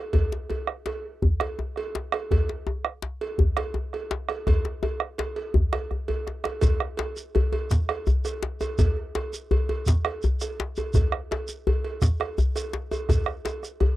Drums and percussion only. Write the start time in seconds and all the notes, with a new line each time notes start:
0.13 bombo low, cowbell, djembe bass
0.32 djembe slap
0.50 cowbell, djembe tone
0.67 bombo rim
0.86 cowbell, djembe slap
1.22 bombo low, djembe bass
1.40 bombo rim, cowbell, djembe slap
1.59 djembe tone
1.76 bombo rim, cowbell
1.95 djembe slap
2.12 bombo rim, cowbell, djembe slap
2.31 bombo low, cowbell, djembe bass
2.49 djembe slap
2.67 djembe tone
2.85 bombo rim
3.02 djembe slap
3.21 cowbell
3.38 bombo low, djembe bass
3.57 bombo rim, cowbell, djembe slap
3.74 djembe tone
3.93 bombo rim, cowbell
4.11 djembe slap
4.29 bombo rim, cowbell, djembe slap
4.47 bombo rim, bombo low, cowbell, djembe slap, djembe bass
4.65 djembe slap
4.83 cowbell, djembe tone
5.00 bombo rim
5.18 bombo rim, cowbell, djembe slap
5.36 cowbell
5.54 bombo low, djembe bass
5.73 bombo rim, cowbell, djembe slap
5.91 bombo rim, djembe bass
6.08 cowbell, djembe bass
6.27 bombo rim, djembe slap
6.44 bombo rim, cowbell, djembe slap
6.61 bombo low, cowbell, djembe slap, djembe bass, shekere
6.80 bombo rim, djembe slap
6.97 cowbell, djembe slap
7.17 djembe slap, shekere
7.35 cowbell, djembe bass
7.52 cowbell, djembe tone
7.71 bombo rim, bombo low, djembe slap, shekere
7.89 bombo rim, cowbell
8.07 djembe slap, djembe bass, shekere
8.25 bombo rim, cowbell, shekere
8.43 djembe slap
8.61 cowbell, djembe tone, shekere
8.78 bombo low, cowbell, djembe slap, djembe bass, shekere
8.97 djembe slap
9.15 cowbell, djembe slap
9.33 djembe slap, shekere
9.51 cowbell, djembe bass
9.69 cowbell, djembe tone
9.86 bombo rim, bombo low, djembe slap, shekere
10.05 bombo rim, cowbell
10.22 djembe slap, djembe bass, shekere
10.40 bombo rim, cowbell, shekere
10.60 djembe slap
10.76 cowbell, djembe tone, shekere
10.94 bombo low, cowbell, djembe slap, djembe bass, shekere
11.12 bombo rim, djembe slap
11.31 cowbell, djembe slap
11.48 djembe slap, shekere
11.67 cowbell, djembe bass
11.84 cowbell
12.02 bombo rim, bombo low, djembe slap, shekere
12.20 bombo rim, cowbell
12.38 djembe slap, djembe bass, shekere
12.56 bombo rim, cowbell, shekere
12.73 djembe slap
12.91 cowbell, djembe tone, shekere
13.09 bombo rim, bombo low, cowbell, djembe slap, djembe bass, shekere
13.26 bombo rim
13.45 cowbell, djembe slap, shekere
13.63 bombo rim, djembe slap, shekere
13.80 bombo rim, cowbell, djembe bass